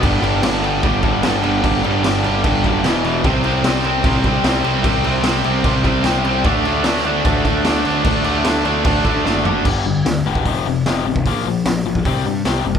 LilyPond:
<<
  \new Staff \with { instrumentName = "Overdriven electric guitar" } { \clef bass \time 4/4 \key d \mixolydian \tempo 4 = 150 <g, d g>8 <g, d g>8 <g, d g>8 <g, d g>8 <g, d g>8 <g, d g>8 <g, d g>8 <g, d g>8 | <g, d g>8 <g, d g>8 <g, d g>8 <g, d g>8 <g, d g>8 <g, d g>8 <e, b, e>8 <e, b, e>8 | <c g c'>8 <c g c'>8 <c g c'>8 <c g c'>8 <c g c'>8 <c g c'>8 <c g c'>8 <c g c'>8 | <c g c'>8 <c g c'>8 <c g c'>8 <c g c'>8 <c g c'>8 <c g c'>8 <c g c'>8 <c g c'>8 |
<d a d'>8 <d a d'>8 <d a d'>8 <d a d'>8 <d a d'>8 <d a d'>8 <d a d'>8 <d a d'>8 | <d a d'>8 <d a d'>8 <d a d'>8 <d a d'>8 <d a d'>8 <d a d'>8 <d a d'>8 <d a d'>8 | \key f \lydian r1 | r1 | }
  \new Staff \with { instrumentName = "Overdriven electric guitar" } { \clef bass \time 4/4 \key d \mixolydian <g, d g>8 <g, d g>8 <g, d g>8 <g, d g>8 <g, d g>8 <g, d g>8 <g, d g>8 <g, d g>8 | <g, d g>8 <g, d g>8 <g, d g>8 <g, d g>8 <g, d g>8 <g, d g>8 <e, b, e>8 <e, b, e>8 | <c g c'>8 <c g c'>8 <c g c'>8 <c g c'>8 <c g c'>8 <c g c'>8 <c g c'>8 <c g c'>8 | <c g c'>8 <c g c'>8 <c g c'>8 <c g c'>8 <c g c'>8 <c g c'>8 <c g c'>8 <c g c'>8 |
<d a d'>8 <d a d'>8 <d a d'>8 <d a d'>8 <d a d'>8 <d a d'>8 <d a d'>8 <d a d'>8 | <d a d'>8 <d a d'>8 <d a d'>8 <d a d'>8 <d a d'>8 <d a d'>8 <d a d'>8 <d a d'>8 | \key f \lydian <g, d g>8 <g, d>8 <g, d>8 <g, d g>8 <f, c f>8 <f, c>8 <f, c f>8 <f, c>8 | <bes, f bes>8 <bes, f>8 <bes, f>8 <bes, f>8 <c g c'>8 <c g>8 <c g c'>8 <c g>8 | }
  \new Staff \with { instrumentName = "Picked electric bass" } { \clef bass \time 4/4 \key d \mixolydian g,,4 g,,4 g,,8 g,,8 g,,8 g,,8 | g,,8 g,,8 g,,8 g,,8 g,,8 fis,,8 e,,4 | c,4 c,4 c,8 c,8 c,8 c,8 | c,8 c,8 c,8 c,8 c,8 c,8 c,4 |
d,4 d,4 d,8 d,8 d,8 d,8 | d,8 d,8 d,8 d,8 d,8 d,8 fis,,4 | \key f \lydian g,,8 g,,8 d,8 e,,8 f,,8 f,,8 f,,8 a,,8 | bes,,8 bes,,8 bes,,8 bes,,8 c,8 g,8 c,8 fis,,8 | }
  \new DrumStaff \with { instrumentName = "Drums" } \drummode { \time 4/4 <cymc bd>8 cymc8 <cymc sn>8 cymc8 <cymc bd>8 <cymc bd>8 <cymc sn>8 cymc8 | <cymc bd>8 cymc8 <cymc sn>8 cymc8 <cymc bd>8 <cymc bd>8 <cymc sn>8 cymc8 | <cymc bd>8 cymc8 <cymc sn>8 cymc8 <cymc bd>8 <cymc bd>8 <cymc sn>8 cymc8 | <cymc bd>8 cymc8 <cymc sn>8 cymc8 <cymc bd>8 <cymc bd>8 <cymc sn>8 cymc8 |
<cymc bd>8 cymc8 <cymc sn>8 cymc8 <cymc bd>8 <cymc bd>8 <cymc sn>8 cymc8 | <cymc bd>8 cymc8 <cymc sn>8 cymc8 <cymc bd>8 <cymc bd>8 sn8 tomfh8 | <cymc bd>4 <hho sn>8. bd16 <hho bd>4 <hho sn>8. bd16 | <hho bd>4 <hho sn>8. bd16 <hho bd>4 <hho sn>8. bd16 | }
>>